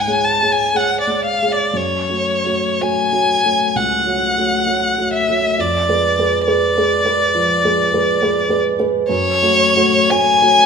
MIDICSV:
0, 0, Header, 1, 3, 480
1, 0, Start_track
1, 0, Key_signature, 3, "minor"
1, 0, Tempo, 1000000
1, 843, Time_signature, 4, 2, 24, 8
1, 843, Tempo, 1050788
1, 1323, Tempo, 950872
1, 1803, Tempo, 903614
1, 3243, Tempo, 873362
1, 4683, Tempo, 995025
1, 5440, End_track
2, 0, Start_track
2, 0, Title_t, "Violin"
2, 0, Program_c, 0, 40
2, 2, Note_on_c, 0, 80, 47
2, 118, Note_on_c, 0, 81, 52
2, 126, Note_off_c, 0, 80, 0
2, 249, Note_on_c, 0, 80, 49
2, 256, Note_off_c, 0, 81, 0
2, 367, Note_on_c, 0, 78, 53
2, 374, Note_off_c, 0, 80, 0
2, 483, Note_off_c, 0, 78, 0
2, 486, Note_on_c, 0, 74, 40
2, 598, Note_off_c, 0, 74, 0
2, 601, Note_on_c, 0, 77, 49
2, 730, Note_on_c, 0, 74, 42
2, 737, Note_off_c, 0, 77, 0
2, 849, Note_on_c, 0, 73, 49
2, 855, Note_off_c, 0, 74, 0
2, 1328, Note_on_c, 0, 80, 62
2, 1336, Note_off_c, 0, 73, 0
2, 1807, Note_on_c, 0, 78, 48
2, 1815, Note_off_c, 0, 80, 0
2, 2530, Note_off_c, 0, 78, 0
2, 2533, Note_on_c, 0, 76, 55
2, 2779, Note_on_c, 0, 74, 53
2, 2787, Note_off_c, 0, 76, 0
2, 3245, Note_off_c, 0, 74, 0
2, 3249, Note_on_c, 0, 74, 51
2, 4415, Note_off_c, 0, 74, 0
2, 4687, Note_on_c, 0, 73, 71
2, 5169, Note_on_c, 0, 80, 86
2, 5177, Note_off_c, 0, 73, 0
2, 5440, Note_off_c, 0, 80, 0
2, 5440, End_track
3, 0, Start_track
3, 0, Title_t, "Grand piano"
3, 0, Program_c, 1, 0
3, 0, Control_c, 1, 64, 127
3, 0, Note_on_c, 1, 44, 32
3, 0, Note_on_c, 1, 56, 26
3, 0, Note_on_c, 1, 68, 27
3, 0, Note_on_c, 1, 73, 28
3, 35, Note_off_c, 1, 56, 0
3, 35, Note_off_c, 1, 68, 0
3, 35, Note_off_c, 1, 73, 0
3, 35, Note_on_c, 1, 56, 27
3, 35, Note_on_c, 1, 68, 26
3, 35, Note_on_c, 1, 73, 28
3, 184, Note_off_c, 1, 56, 0
3, 184, Note_off_c, 1, 68, 0
3, 184, Note_off_c, 1, 73, 0
3, 201, Note_on_c, 1, 56, 25
3, 203, Note_on_c, 1, 68, 26
3, 205, Note_on_c, 1, 73, 27
3, 347, Note_off_c, 1, 56, 0
3, 348, Note_off_c, 1, 68, 0
3, 349, Note_off_c, 1, 73, 0
3, 356, Note_on_c, 1, 56, 25
3, 357, Note_on_c, 1, 68, 25
3, 359, Note_on_c, 1, 73, 28
3, 503, Note_off_c, 1, 56, 0
3, 504, Note_off_c, 1, 68, 0
3, 505, Note_off_c, 1, 73, 0
3, 515, Note_on_c, 1, 56, 25
3, 516, Note_on_c, 1, 68, 26
3, 521, Note_on_c, 1, 73, 25
3, 663, Note_off_c, 1, 56, 0
3, 663, Note_off_c, 1, 68, 0
3, 666, Note_off_c, 1, 73, 0
3, 681, Note_on_c, 1, 56, 23
3, 686, Note_on_c, 1, 68, 24
3, 690, Note_on_c, 1, 73, 30
3, 826, Note_off_c, 1, 56, 0
3, 828, Note_off_c, 1, 68, 0
3, 830, Note_off_c, 1, 73, 0
3, 832, Note_on_c, 1, 42, 34
3, 850, Control_c, 1, 64, 0
3, 853, Note_off_c, 1, 44, 0
3, 928, Control_c, 1, 64, 127
3, 990, Note_off_c, 1, 42, 0
3, 995, Note_on_c, 1, 57, 25
3, 997, Note_on_c, 1, 66, 29
3, 998, Note_on_c, 1, 73, 29
3, 1146, Note_off_c, 1, 57, 0
3, 1147, Note_off_c, 1, 66, 0
3, 1148, Note_off_c, 1, 73, 0
3, 1159, Note_on_c, 1, 57, 26
3, 1159, Note_on_c, 1, 66, 28
3, 1163, Note_on_c, 1, 73, 33
3, 1304, Note_off_c, 1, 57, 0
3, 1304, Note_off_c, 1, 66, 0
3, 1306, Note_off_c, 1, 73, 0
3, 1322, Note_on_c, 1, 57, 27
3, 1324, Note_on_c, 1, 66, 29
3, 1327, Note_on_c, 1, 73, 32
3, 1471, Note_off_c, 1, 57, 0
3, 1472, Note_off_c, 1, 66, 0
3, 1474, Note_off_c, 1, 73, 0
3, 1480, Note_on_c, 1, 57, 27
3, 1485, Note_on_c, 1, 66, 27
3, 1487, Note_on_c, 1, 73, 31
3, 1626, Note_off_c, 1, 57, 0
3, 1629, Note_off_c, 1, 66, 0
3, 1630, Note_off_c, 1, 73, 0
3, 1646, Note_on_c, 1, 57, 28
3, 1647, Note_on_c, 1, 66, 24
3, 1650, Note_on_c, 1, 73, 30
3, 1787, Note_off_c, 1, 57, 0
3, 1787, Note_off_c, 1, 66, 0
3, 1789, Note_off_c, 1, 73, 0
3, 1800, Note_on_c, 1, 37, 32
3, 1958, Note_on_c, 1, 57, 27
3, 1960, Note_off_c, 1, 37, 0
3, 1961, Note_on_c, 1, 66, 27
3, 1962, Note_on_c, 1, 73, 28
3, 2108, Note_off_c, 1, 57, 0
3, 2110, Note_off_c, 1, 66, 0
3, 2110, Note_off_c, 1, 73, 0
3, 2130, Note_on_c, 1, 57, 25
3, 2133, Note_on_c, 1, 66, 26
3, 2138, Note_on_c, 1, 73, 30
3, 2273, Note_off_c, 1, 57, 0
3, 2277, Note_off_c, 1, 66, 0
3, 2277, Note_off_c, 1, 73, 0
3, 2281, Note_on_c, 1, 57, 29
3, 2285, Note_on_c, 1, 66, 28
3, 2285, Note_on_c, 1, 73, 29
3, 2430, Note_off_c, 1, 57, 0
3, 2432, Note_off_c, 1, 66, 0
3, 2432, Note_off_c, 1, 73, 0
3, 2453, Note_on_c, 1, 57, 25
3, 2453, Note_on_c, 1, 66, 26
3, 2459, Note_on_c, 1, 73, 27
3, 2595, Note_off_c, 1, 66, 0
3, 2596, Note_off_c, 1, 57, 0
3, 2599, Note_off_c, 1, 73, 0
3, 2617, Note_on_c, 1, 57, 29
3, 2620, Note_on_c, 1, 66, 29
3, 2623, Note_on_c, 1, 73, 30
3, 2756, Note_off_c, 1, 57, 0
3, 2758, Note_off_c, 1, 66, 0
3, 2760, Note_off_c, 1, 73, 0
3, 2772, Note_on_c, 1, 41, 35
3, 2776, Control_c, 1, 64, 0
3, 2857, Control_c, 1, 64, 127
3, 2924, Note_off_c, 1, 41, 0
3, 2932, Note_on_c, 1, 68, 31
3, 2933, Note_on_c, 1, 56, 29
3, 2938, Note_on_c, 1, 71, 30
3, 3073, Note_off_c, 1, 56, 0
3, 3073, Note_off_c, 1, 68, 0
3, 3076, Note_off_c, 1, 71, 0
3, 3091, Note_on_c, 1, 56, 33
3, 3097, Note_on_c, 1, 68, 34
3, 3097, Note_on_c, 1, 71, 33
3, 3231, Note_off_c, 1, 56, 0
3, 3233, Note_off_c, 1, 68, 0
3, 3234, Note_off_c, 1, 71, 0
3, 3245, Note_on_c, 1, 56, 33
3, 3247, Note_on_c, 1, 71, 39
3, 3250, Note_on_c, 1, 68, 32
3, 3389, Note_off_c, 1, 56, 0
3, 3390, Note_off_c, 1, 71, 0
3, 3392, Note_off_c, 1, 68, 0
3, 3409, Note_on_c, 1, 56, 33
3, 3411, Note_on_c, 1, 68, 33
3, 3414, Note_on_c, 1, 71, 35
3, 3550, Note_off_c, 1, 56, 0
3, 3551, Note_off_c, 1, 68, 0
3, 3553, Note_off_c, 1, 71, 0
3, 3562, Note_on_c, 1, 56, 33
3, 3564, Note_on_c, 1, 68, 32
3, 3568, Note_on_c, 1, 71, 37
3, 3705, Note_off_c, 1, 56, 0
3, 3706, Note_off_c, 1, 68, 0
3, 3708, Note_off_c, 1, 71, 0
3, 3724, Note_on_c, 1, 53, 38
3, 3876, Note_off_c, 1, 53, 0
3, 3888, Note_on_c, 1, 68, 35
3, 3889, Note_on_c, 1, 56, 34
3, 3893, Note_on_c, 1, 71, 34
3, 4027, Note_off_c, 1, 56, 0
3, 4027, Note_off_c, 1, 68, 0
3, 4029, Note_off_c, 1, 71, 0
3, 4045, Note_on_c, 1, 56, 35
3, 4048, Note_on_c, 1, 68, 35
3, 4052, Note_on_c, 1, 71, 41
3, 4184, Note_off_c, 1, 56, 0
3, 4185, Note_off_c, 1, 68, 0
3, 4188, Note_off_c, 1, 71, 0
3, 4206, Note_on_c, 1, 56, 35
3, 4209, Note_on_c, 1, 68, 32
3, 4209, Note_on_c, 1, 71, 39
3, 4344, Note_off_c, 1, 56, 0
3, 4345, Note_off_c, 1, 71, 0
3, 4346, Note_off_c, 1, 68, 0
3, 4355, Note_on_c, 1, 56, 34
3, 4356, Note_on_c, 1, 68, 35
3, 4361, Note_on_c, 1, 71, 33
3, 4499, Note_off_c, 1, 56, 0
3, 4500, Note_off_c, 1, 68, 0
3, 4503, Note_off_c, 1, 71, 0
3, 4517, Note_on_c, 1, 68, 34
3, 4521, Note_on_c, 1, 56, 36
3, 4523, Note_on_c, 1, 71, 40
3, 4667, Note_off_c, 1, 68, 0
3, 4669, Note_off_c, 1, 56, 0
3, 4670, Note_off_c, 1, 71, 0
3, 4685, Note_on_c, 1, 42, 48
3, 4691, Control_c, 1, 64, 0
3, 4776, Control_c, 1, 64, 127
3, 4836, Note_off_c, 1, 42, 0
3, 4844, Note_on_c, 1, 57, 39
3, 4845, Note_on_c, 1, 66, 38
3, 4846, Note_on_c, 1, 73, 40
3, 4993, Note_off_c, 1, 57, 0
3, 4993, Note_off_c, 1, 66, 0
3, 4994, Note_off_c, 1, 73, 0
3, 5006, Note_on_c, 1, 57, 41
3, 5007, Note_on_c, 1, 66, 41
3, 5010, Note_on_c, 1, 73, 46
3, 5154, Note_off_c, 1, 57, 0
3, 5154, Note_off_c, 1, 66, 0
3, 5156, Note_off_c, 1, 73, 0
3, 5170, Note_on_c, 1, 57, 36
3, 5173, Note_on_c, 1, 66, 37
3, 5175, Note_on_c, 1, 73, 43
3, 5312, Note_off_c, 1, 57, 0
3, 5313, Note_off_c, 1, 66, 0
3, 5315, Note_off_c, 1, 73, 0
3, 5325, Note_on_c, 1, 57, 40
3, 5325, Note_on_c, 1, 66, 40
3, 5333, Note_on_c, 1, 73, 46
3, 5440, Note_off_c, 1, 57, 0
3, 5440, Note_off_c, 1, 66, 0
3, 5440, Note_off_c, 1, 73, 0
3, 5440, End_track
0, 0, End_of_file